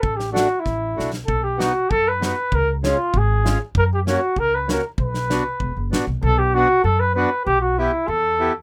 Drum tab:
SD |-oo-o-oo|--o---o-|--o---o-|--o---o-|
BD |o---o---|o---o---|o---o---|o---o---|

SD |-oo---o-|--------|--------|
BD |o---o---|--------|--------|